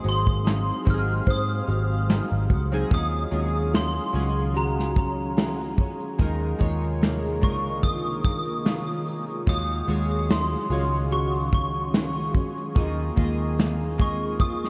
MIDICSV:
0, 0, Header, 1, 7, 480
1, 0, Start_track
1, 0, Tempo, 819896
1, 1706, Time_signature, 4, 2, 24, 8
1, 8603, End_track
2, 0, Start_track
2, 0, Title_t, "Glockenspiel"
2, 0, Program_c, 0, 9
2, 50, Note_on_c, 0, 84, 86
2, 528, Note_on_c, 0, 89, 81
2, 532, Note_off_c, 0, 84, 0
2, 764, Note_off_c, 0, 89, 0
2, 764, Note_on_c, 0, 87, 72
2, 1211, Note_off_c, 0, 87, 0
2, 1721, Note_on_c, 0, 87, 97
2, 2196, Note_on_c, 0, 84, 84
2, 2208, Note_off_c, 0, 87, 0
2, 2674, Note_on_c, 0, 82, 79
2, 2685, Note_off_c, 0, 84, 0
2, 2781, Note_off_c, 0, 82, 0
2, 2917, Note_on_c, 0, 82, 73
2, 3368, Note_off_c, 0, 82, 0
2, 4353, Note_on_c, 0, 85, 85
2, 4573, Note_off_c, 0, 85, 0
2, 4585, Note_on_c, 0, 87, 100
2, 4694, Note_off_c, 0, 87, 0
2, 4827, Note_on_c, 0, 87, 94
2, 5284, Note_off_c, 0, 87, 0
2, 5557, Note_on_c, 0, 87, 107
2, 6036, Note_on_c, 0, 84, 94
2, 6047, Note_off_c, 0, 87, 0
2, 6512, Note_on_c, 0, 85, 84
2, 6527, Note_off_c, 0, 84, 0
2, 6734, Note_off_c, 0, 85, 0
2, 6759, Note_on_c, 0, 85, 78
2, 7210, Note_off_c, 0, 85, 0
2, 8204, Note_on_c, 0, 85, 79
2, 8308, Note_off_c, 0, 85, 0
2, 8433, Note_on_c, 0, 87, 99
2, 8603, Note_off_c, 0, 87, 0
2, 8603, End_track
3, 0, Start_track
3, 0, Title_t, "Synth keys"
3, 0, Program_c, 1, 88
3, 0, Control_c, 1, 64, 127
3, 0, Note_on_c, 1, 54, 73
3, 0, Note_on_c, 1, 58, 48
3, 0, Note_on_c, 1, 60, 64
3, 0, Note_on_c, 1, 63, 62
3, 0, Note_on_c, 1, 68, 78
3, 221, Note_off_c, 1, 54, 0
3, 226, Note_off_c, 1, 63, 0
3, 229, Note_off_c, 1, 68, 0
3, 242, Note_off_c, 1, 60, 0
3, 498, Note_on_c, 1, 54, 74
3, 502, Note_on_c, 1, 60, 63
3, 507, Note_on_c, 1, 63, 66
3, 510, Note_on_c, 1, 67, 65
3, 550, Note_off_c, 1, 67, 0
3, 550, Note_on_c, 1, 68, 82
3, 1090, Note_off_c, 1, 54, 0
3, 1092, Note_off_c, 1, 60, 0
3, 1094, Note_off_c, 1, 63, 0
3, 1116, Note_off_c, 1, 68, 0
3, 1590, Note_on_c, 1, 54, 87
3, 1594, Note_on_c, 1, 60, 80
3, 1600, Note_on_c, 1, 63, 84
3, 1604, Note_on_c, 1, 68, 104
3, 1659, Note_off_c, 1, 54, 0
3, 1661, Note_off_c, 1, 60, 0
3, 1664, Note_off_c, 1, 63, 0
3, 1666, Note_off_c, 1, 68, 0
3, 1701, Note_on_c, 1, 54, 66
3, 1705, Note_on_c, 1, 61, 61
3, 1710, Note_on_c, 1, 65, 63
3, 1713, Control_c, 1, 64, 0
3, 1716, Note_on_c, 1, 68, 77
3, 1718, Note_off_c, 1, 58, 0
3, 1815, Control_c, 1, 64, 127
3, 1858, Note_off_c, 1, 54, 0
3, 1860, Note_off_c, 1, 61, 0
3, 1862, Note_off_c, 1, 65, 0
3, 1865, Note_off_c, 1, 68, 0
3, 1938, Note_on_c, 1, 54, 72
3, 1941, Note_on_c, 1, 61, 58
3, 1947, Note_on_c, 1, 65, 63
3, 1952, Note_on_c, 1, 68, 75
3, 2236, Note_off_c, 1, 54, 0
3, 2238, Note_off_c, 1, 61, 0
3, 2241, Note_off_c, 1, 65, 0
3, 2243, Note_off_c, 1, 68, 0
3, 2417, Note_on_c, 1, 54, 70
3, 2420, Note_on_c, 1, 61, 63
3, 2424, Note_on_c, 1, 65, 64
3, 2431, Note_on_c, 1, 68, 78
3, 3010, Note_off_c, 1, 54, 0
3, 3012, Note_off_c, 1, 61, 0
3, 3014, Note_off_c, 1, 65, 0
3, 3017, Note_off_c, 1, 68, 0
3, 3621, Note_on_c, 1, 56, 83
3, 3625, Note_on_c, 1, 63, 75
3, 3631, Note_on_c, 1, 65, 71
3, 3634, Control_c, 1, 64, 0
3, 3636, Note_on_c, 1, 70, 91
3, 3753, Control_c, 1, 64, 127
3, 3778, Note_off_c, 1, 56, 0
3, 3780, Note_off_c, 1, 63, 0
3, 3783, Note_off_c, 1, 65, 0
3, 3785, Note_off_c, 1, 70, 0
3, 3857, Note_on_c, 1, 56, 86
3, 3863, Note_on_c, 1, 63, 75
3, 3867, Note_on_c, 1, 65, 75
3, 3871, Note_on_c, 1, 73, 92
3, 4156, Note_off_c, 1, 56, 0
3, 4159, Note_off_c, 1, 63, 0
3, 4161, Note_off_c, 1, 65, 0
3, 4163, Note_off_c, 1, 73, 0
3, 4340, Note_on_c, 1, 56, 72
3, 4343, Note_on_c, 1, 62, 54
3, 4349, Note_on_c, 1, 65, 64
3, 4354, Note_on_c, 1, 70, 80
3, 4384, Note_on_c, 1, 63, 69
3, 4387, Note_off_c, 1, 62, 0
3, 4932, Note_off_c, 1, 56, 0
3, 4936, Note_off_c, 1, 65, 0
3, 4939, Note_off_c, 1, 70, 0
3, 4954, Note_off_c, 1, 63, 0
3, 5541, Note_on_c, 1, 56, 69
3, 5544, Note_on_c, 1, 65, 67
3, 5549, Note_on_c, 1, 66, 62
3, 5553, Note_on_c, 1, 73, 75
3, 5555, Control_c, 1, 64, 0
3, 5640, Control_c, 1, 64, 127
3, 5698, Note_off_c, 1, 56, 0
3, 5700, Note_off_c, 1, 65, 0
3, 5702, Note_off_c, 1, 66, 0
3, 5705, Note_off_c, 1, 73, 0
3, 5779, Note_on_c, 1, 56, 69
3, 5784, Note_on_c, 1, 65, 61
3, 5789, Note_on_c, 1, 66, 67
3, 5794, Note_on_c, 1, 73, 78
3, 6077, Note_off_c, 1, 56, 0
3, 6080, Note_off_c, 1, 65, 0
3, 6082, Note_off_c, 1, 66, 0
3, 6085, Note_off_c, 1, 73, 0
3, 6264, Note_on_c, 1, 56, 73
3, 6269, Note_on_c, 1, 65, 70
3, 6273, Note_on_c, 1, 66, 68
3, 6277, Note_on_c, 1, 73, 80
3, 6854, Note_off_c, 1, 56, 0
3, 6857, Note_off_c, 1, 65, 0
3, 6859, Note_off_c, 1, 66, 0
3, 6861, Note_off_c, 1, 73, 0
3, 7464, Note_on_c, 1, 58, 78
3, 7469, Note_on_c, 1, 65, 76
3, 7474, Note_on_c, 1, 68, 77
3, 7477, Control_c, 1, 64, 0
3, 7479, Note_on_c, 1, 75, 88
3, 7591, Control_c, 1, 64, 127
3, 7620, Note_off_c, 1, 58, 0
3, 7623, Note_off_c, 1, 65, 0
3, 7626, Note_off_c, 1, 68, 0
3, 7628, Note_off_c, 1, 75, 0
3, 7705, Note_on_c, 1, 58, 82
3, 7709, Note_on_c, 1, 65, 75
3, 7716, Note_on_c, 1, 68, 75
3, 7719, Note_on_c, 1, 75, 95
3, 8001, Note_off_c, 1, 58, 0
3, 8003, Note_off_c, 1, 65, 0
3, 8006, Note_off_c, 1, 68, 0
3, 8008, Note_off_c, 1, 75, 0
3, 8184, Note_on_c, 1, 58, 71
3, 8189, Note_on_c, 1, 65, 68
3, 8193, Note_on_c, 1, 68, 65
3, 8200, Note_on_c, 1, 75, 82
3, 8603, Note_off_c, 1, 58, 0
3, 8603, Note_off_c, 1, 65, 0
3, 8603, Note_off_c, 1, 68, 0
3, 8603, Note_off_c, 1, 75, 0
3, 8603, End_track
4, 0, Start_track
4, 0, Title_t, "Nylon-string guitar"
4, 0, Program_c, 2, 24
4, 0, Note_on_c, 2, 56, 78
4, 0, Note_on_c, 2, 63, 61
4, 0, Note_on_c, 2, 72, 68
4, 23, Note_on_c, 2, 66, 63
4, 258, Note_off_c, 2, 63, 0
4, 261, Note_on_c, 2, 63, 55
4, 496, Note_off_c, 2, 66, 0
4, 499, Note_on_c, 2, 66, 60
4, 733, Note_off_c, 2, 72, 0
4, 740, Note_on_c, 2, 72, 65
4, 978, Note_off_c, 2, 66, 0
4, 981, Note_on_c, 2, 66, 59
4, 1219, Note_off_c, 2, 63, 0
4, 1221, Note_on_c, 2, 63, 56
4, 1460, Note_off_c, 2, 66, 0
4, 1462, Note_on_c, 2, 66, 53
4, 1702, Note_on_c, 2, 51, 72
4, 1756, Note_off_c, 2, 72, 0
4, 1833, Note_off_c, 2, 56, 0
4, 1939, Note_on_c, 2, 56, 58
4, 1957, Note_off_c, 2, 66, 0
4, 2181, Note_off_c, 2, 63, 0
4, 2184, Note_on_c, 2, 61, 54
4, 2423, Note_off_c, 2, 56, 0
4, 2425, Note_on_c, 2, 56, 57
4, 2666, Note_on_c, 2, 66, 65
4, 2900, Note_off_c, 2, 61, 0
4, 2907, Note_on_c, 2, 61, 56
4, 3137, Note_off_c, 2, 66, 0
4, 3144, Note_on_c, 2, 66, 63
4, 3382, Note_off_c, 2, 61, 0
4, 3389, Note_on_c, 2, 61, 55
4, 3624, Note_off_c, 2, 51, 0
4, 3627, Note_on_c, 2, 51, 78
4, 3678, Note_off_c, 2, 66, 0
4, 3681, Note_off_c, 2, 61, 0
4, 3863, Note_off_c, 2, 56, 0
4, 3865, Note_on_c, 2, 56, 60
4, 4106, Note_on_c, 2, 58, 58
4, 4342, Note_off_c, 2, 56, 0
4, 4344, Note_on_c, 2, 56, 59
4, 4589, Note_on_c, 2, 65, 65
4, 4824, Note_off_c, 2, 58, 0
4, 4827, Note_on_c, 2, 58, 59
4, 5062, Note_off_c, 2, 65, 0
4, 5064, Note_on_c, 2, 65, 63
4, 5303, Note_off_c, 2, 58, 0
4, 5305, Note_on_c, 2, 58, 57
4, 5543, Note_off_c, 2, 51, 0
4, 5546, Note_on_c, 2, 51, 78
4, 5782, Note_off_c, 2, 56, 0
4, 5784, Note_on_c, 2, 56, 63
4, 5802, Note_off_c, 2, 58, 0
4, 6021, Note_on_c, 2, 61, 60
4, 6262, Note_off_c, 2, 56, 0
4, 6265, Note_on_c, 2, 56, 59
4, 6503, Note_off_c, 2, 65, 0
4, 6506, Note_on_c, 2, 66, 66
4, 6739, Note_off_c, 2, 61, 0
4, 6746, Note_on_c, 2, 61, 56
4, 6981, Note_off_c, 2, 66, 0
4, 6988, Note_on_c, 2, 66, 60
4, 7221, Note_off_c, 2, 61, 0
4, 7228, Note_on_c, 2, 61, 55
4, 7470, Note_off_c, 2, 51, 0
4, 7472, Note_on_c, 2, 51, 74
4, 7521, Note_off_c, 2, 61, 0
4, 7521, Note_off_c, 2, 66, 0
4, 7714, Note_off_c, 2, 56, 0
4, 7717, Note_on_c, 2, 56, 64
4, 7952, Note_on_c, 2, 58, 55
4, 8190, Note_off_c, 2, 56, 0
4, 8192, Note_on_c, 2, 56, 54
4, 8430, Note_on_c, 2, 65, 63
4, 8603, Note_off_c, 2, 51, 0
4, 8603, Note_off_c, 2, 56, 0
4, 8603, Note_off_c, 2, 58, 0
4, 8603, Note_off_c, 2, 65, 0
4, 8603, End_track
5, 0, Start_track
5, 0, Title_t, "Ambient pad"
5, 0, Program_c, 3, 92
5, 0, Note_on_c, 3, 56, 76
5, 0, Note_on_c, 3, 60, 69
5, 0, Note_on_c, 3, 77, 85
5, 1681, Note_off_c, 3, 60, 0
5, 1682, Note_off_c, 3, 56, 0
5, 1684, Note_off_c, 3, 77, 0
5, 1705, Note_on_c, 3, 51, 78
5, 1708, Note_on_c, 3, 54, 69
5, 1708, Note_on_c, 3, 61, 70
5, 1709, Note_on_c, 3, 68, 87
5, 1711, Note_on_c, 3, 77, 70
5, 3607, Note_off_c, 3, 51, 0
5, 3608, Note_off_c, 3, 54, 0
5, 3608, Note_off_c, 3, 61, 0
5, 3610, Note_off_c, 3, 77, 0
5, 3624, Note_on_c, 3, 51, 76
5, 3626, Note_on_c, 3, 48, 73
5, 3626, Note_on_c, 3, 58, 72
5, 5526, Note_off_c, 3, 68, 0
5, 5527, Note_off_c, 3, 51, 0
5, 5528, Note_off_c, 3, 48, 0
5, 5528, Note_off_c, 3, 58, 0
5, 5552, Note_on_c, 3, 54, 66
5, 5552, Note_on_c, 3, 61, 70
5, 5552, Note_on_c, 3, 68, 89
5, 5553, Note_on_c, 3, 51, 74
5, 5553, Note_on_c, 3, 77, 72
5, 7451, Note_off_c, 3, 54, 0
5, 7452, Note_off_c, 3, 61, 0
5, 7452, Note_off_c, 3, 77, 0
5, 7469, Note_on_c, 3, 58, 72
5, 7469, Note_on_c, 3, 60, 71
5, 8603, Note_off_c, 3, 51, 0
5, 8603, Note_off_c, 3, 58, 0
5, 8603, Note_off_c, 3, 60, 0
5, 8603, Note_off_c, 3, 68, 0
5, 8603, End_track
6, 0, Start_track
6, 0, Title_t, "Picked electric bass"
6, 0, Program_c, 4, 34
6, 27, Note_on_c, 4, 32, 92
6, 411, Note_off_c, 4, 32, 0
6, 510, Note_on_c, 4, 32, 95
6, 700, Note_off_c, 4, 32, 0
6, 744, Note_on_c, 4, 44, 108
6, 937, Note_off_c, 4, 44, 0
6, 986, Note_on_c, 4, 32, 93
6, 1284, Note_off_c, 4, 32, 0
6, 1358, Note_on_c, 4, 32, 87
6, 1444, Note_off_c, 4, 32, 0
6, 1464, Note_on_c, 4, 37, 86
6, 1657, Note_off_c, 4, 37, 0
6, 1705, Note_on_c, 4, 39, 90
6, 1897, Note_off_c, 4, 39, 0
6, 1944, Note_on_c, 4, 39, 89
6, 2329, Note_off_c, 4, 39, 0
6, 2424, Note_on_c, 4, 37, 88
6, 3362, Note_off_c, 4, 37, 0
6, 3627, Note_on_c, 4, 39, 103
6, 3819, Note_off_c, 4, 39, 0
6, 3869, Note_on_c, 4, 39, 88
6, 4350, Note_off_c, 4, 39, 0
6, 4350, Note_on_c, 4, 37, 85
6, 5286, Note_off_c, 4, 37, 0
6, 5546, Note_on_c, 4, 39, 97
6, 5739, Note_off_c, 4, 39, 0
6, 5785, Note_on_c, 4, 39, 94
6, 6170, Note_off_c, 4, 39, 0
6, 6265, Note_on_c, 4, 37, 87
6, 7204, Note_off_c, 4, 37, 0
6, 7472, Note_on_c, 4, 39, 96
6, 7662, Note_off_c, 4, 39, 0
6, 7714, Note_on_c, 4, 39, 83
6, 8603, Note_off_c, 4, 39, 0
6, 8603, End_track
7, 0, Start_track
7, 0, Title_t, "Drums"
7, 22, Note_on_c, 9, 42, 84
7, 80, Note_off_c, 9, 42, 0
7, 157, Note_on_c, 9, 36, 91
7, 215, Note_off_c, 9, 36, 0
7, 270, Note_on_c, 9, 42, 101
7, 275, Note_on_c, 9, 38, 113
7, 328, Note_off_c, 9, 42, 0
7, 334, Note_off_c, 9, 38, 0
7, 505, Note_on_c, 9, 42, 57
7, 509, Note_on_c, 9, 36, 98
7, 564, Note_off_c, 9, 42, 0
7, 567, Note_off_c, 9, 36, 0
7, 739, Note_on_c, 9, 42, 77
7, 744, Note_on_c, 9, 36, 88
7, 797, Note_off_c, 9, 42, 0
7, 802, Note_off_c, 9, 36, 0
7, 985, Note_on_c, 9, 42, 75
7, 1044, Note_off_c, 9, 42, 0
7, 1228, Note_on_c, 9, 38, 111
7, 1230, Note_on_c, 9, 42, 95
7, 1286, Note_off_c, 9, 38, 0
7, 1289, Note_off_c, 9, 42, 0
7, 1464, Note_on_c, 9, 36, 84
7, 1465, Note_on_c, 9, 42, 68
7, 1522, Note_off_c, 9, 36, 0
7, 1523, Note_off_c, 9, 42, 0
7, 1705, Note_on_c, 9, 36, 115
7, 1705, Note_on_c, 9, 42, 85
7, 1763, Note_off_c, 9, 42, 0
7, 1764, Note_off_c, 9, 36, 0
7, 1939, Note_on_c, 9, 42, 82
7, 1997, Note_off_c, 9, 42, 0
7, 2079, Note_on_c, 9, 42, 45
7, 2137, Note_off_c, 9, 42, 0
7, 2186, Note_on_c, 9, 42, 87
7, 2191, Note_on_c, 9, 38, 114
7, 2244, Note_off_c, 9, 42, 0
7, 2250, Note_off_c, 9, 38, 0
7, 2425, Note_on_c, 9, 42, 58
7, 2483, Note_off_c, 9, 42, 0
7, 2659, Note_on_c, 9, 42, 82
7, 2717, Note_off_c, 9, 42, 0
7, 2807, Note_on_c, 9, 38, 28
7, 2866, Note_off_c, 9, 38, 0
7, 2902, Note_on_c, 9, 42, 68
7, 2906, Note_on_c, 9, 36, 99
7, 2961, Note_off_c, 9, 42, 0
7, 2964, Note_off_c, 9, 36, 0
7, 3149, Note_on_c, 9, 38, 102
7, 3151, Note_on_c, 9, 42, 90
7, 3208, Note_off_c, 9, 38, 0
7, 3210, Note_off_c, 9, 42, 0
7, 3384, Note_on_c, 9, 36, 81
7, 3385, Note_on_c, 9, 42, 67
7, 3443, Note_off_c, 9, 36, 0
7, 3443, Note_off_c, 9, 42, 0
7, 3513, Note_on_c, 9, 42, 56
7, 3572, Note_off_c, 9, 42, 0
7, 3626, Note_on_c, 9, 36, 113
7, 3626, Note_on_c, 9, 42, 86
7, 3684, Note_off_c, 9, 42, 0
7, 3685, Note_off_c, 9, 36, 0
7, 3862, Note_on_c, 9, 42, 80
7, 3869, Note_on_c, 9, 36, 83
7, 3921, Note_off_c, 9, 42, 0
7, 3927, Note_off_c, 9, 36, 0
7, 4001, Note_on_c, 9, 42, 48
7, 4060, Note_off_c, 9, 42, 0
7, 4109, Note_on_c, 9, 42, 90
7, 4115, Note_on_c, 9, 38, 122
7, 4168, Note_off_c, 9, 42, 0
7, 4173, Note_off_c, 9, 38, 0
7, 4347, Note_on_c, 9, 42, 56
7, 4350, Note_on_c, 9, 36, 102
7, 4405, Note_off_c, 9, 42, 0
7, 4408, Note_off_c, 9, 36, 0
7, 4583, Note_on_c, 9, 42, 79
7, 4585, Note_on_c, 9, 36, 86
7, 4642, Note_off_c, 9, 42, 0
7, 4644, Note_off_c, 9, 36, 0
7, 4826, Note_on_c, 9, 42, 69
7, 4827, Note_on_c, 9, 36, 96
7, 4885, Note_off_c, 9, 42, 0
7, 4886, Note_off_c, 9, 36, 0
7, 5071, Note_on_c, 9, 38, 112
7, 5073, Note_on_c, 9, 42, 93
7, 5129, Note_off_c, 9, 38, 0
7, 5131, Note_off_c, 9, 42, 0
7, 5306, Note_on_c, 9, 46, 52
7, 5365, Note_off_c, 9, 46, 0
7, 5435, Note_on_c, 9, 42, 58
7, 5494, Note_off_c, 9, 42, 0
7, 5545, Note_on_c, 9, 36, 112
7, 5546, Note_on_c, 9, 42, 92
7, 5604, Note_off_c, 9, 36, 0
7, 5605, Note_off_c, 9, 42, 0
7, 5782, Note_on_c, 9, 42, 82
7, 5840, Note_off_c, 9, 42, 0
7, 6027, Note_on_c, 9, 42, 89
7, 6032, Note_on_c, 9, 38, 116
7, 6086, Note_off_c, 9, 42, 0
7, 6091, Note_off_c, 9, 38, 0
7, 6265, Note_on_c, 9, 42, 57
7, 6324, Note_off_c, 9, 42, 0
7, 6499, Note_on_c, 9, 42, 78
7, 6558, Note_off_c, 9, 42, 0
7, 6747, Note_on_c, 9, 42, 71
7, 6749, Note_on_c, 9, 36, 92
7, 6805, Note_off_c, 9, 42, 0
7, 6807, Note_off_c, 9, 36, 0
7, 6992, Note_on_c, 9, 38, 113
7, 6994, Note_on_c, 9, 42, 92
7, 7050, Note_off_c, 9, 38, 0
7, 7052, Note_off_c, 9, 42, 0
7, 7228, Note_on_c, 9, 36, 84
7, 7229, Note_on_c, 9, 42, 70
7, 7286, Note_off_c, 9, 36, 0
7, 7288, Note_off_c, 9, 42, 0
7, 7360, Note_on_c, 9, 42, 57
7, 7418, Note_off_c, 9, 42, 0
7, 7470, Note_on_c, 9, 36, 115
7, 7471, Note_on_c, 9, 42, 85
7, 7529, Note_off_c, 9, 36, 0
7, 7530, Note_off_c, 9, 42, 0
7, 7706, Note_on_c, 9, 42, 84
7, 7713, Note_on_c, 9, 36, 86
7, 7764, Note_off_c, 9, 42, 0
7, 7771, Note_off_c, 9, 36, 0
7, 7953, Note_on_c, 9, 42, 88
7, 7958, Note_on_c, 9, 38, 111
7, 8012, Note_off_c, 9, 42, 0
7, 8017, Note_off_c, 9, 38, 0
7, 8187, Note_on_c, 9, 42, 57
7, 8193, Note_on_c, 9, 36, 100
7, 8246, Note_off_c, 9, 42, 0
7, 8252, Note_off_c, 9, 36, 0
7, 8425, Note_on_c, 9, 42, 79
7, 8429, Note_on_c, 9, 36, 89
7, 8483, Note_off_c, 9, 42, 0
7, 8488, Note_off_c, 9, 36, 0
7, 8572, Note_on_c, 9, 38, 29
7, 8603, Note_off_c, 9, 38, 0
7, 8603, End_track
0, 0, End_of_file